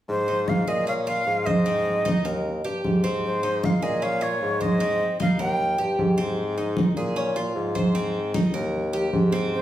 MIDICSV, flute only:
0, 0, Header, 1, 2, 480
1, 0, Start_track
1, 0, Key_signature, -4, "major"
1, 0, Tempo, 393185
1, 109, Time_signature, 4, 2, 24, 8
1, 11742, End_track
2, 0, Start_track
2, 0, Title_t, "Flute"
2, 0, Program_c, 0, 73
2, 120, Note_on_c, 0, 72, 104
2, 591, Note_on_c, 0, 77, 94
2, 609, Note_off_c, 0, 72, 0
2, 838, Note_on_c, 0, 75, 97
2, 857, Note_off_c, 0, 77, 0
2, 1067, Note_off_c, 0, 75, 0
2, 1075, Note_on_c, 0, 77, 102
2, 1148, Note_off_c, 0, 77, 0
2, 1303, Note_on_c, 0, 77, 101
2, 1779, Note_on_c, 0, 75, 94
2, 1798, Note_off_c, 0, 77, 0
2, 3226, Note_off_c, 0, 75, 0
2, 3974, Note_on_c, 0, 72, 90
2, 4450, Note_on_c, 0, 77, 81
2, 4468, Note_off_c, 0, 72, 0
2, 4678, Note_on_c, 0, 75, 88
2, 4696, Note_off_c, 0, 77, 0
2, 4917, Note_on_c, 0, 77, 103
2, 4935, Note_off_c, 0, 75, 0
2, 5159, Note_on_c, 0, 73, 91
2, 5177, Note_off_c, 0, 77, 0
2, 5639, Note_on_c, 0, 75, 99
2, 5658, Note_off_c, 0, 73, 0
2, 6351, Note_off_c, 0, 75, 0
2, 6359, Note_on_c, 0, 77, 93
2, 6579, Note_off_c, 0, 77, 0
2, 6608, Note_on_c, 0, 79, 98
2, 7511, Note_off_c, 0, 79, 0
2, 11652, Note_on_c, 0, 72, 91
2, 11742, Note_off_c, 0, 72, 0
2, 11742, End_track
0, 0, End_of_file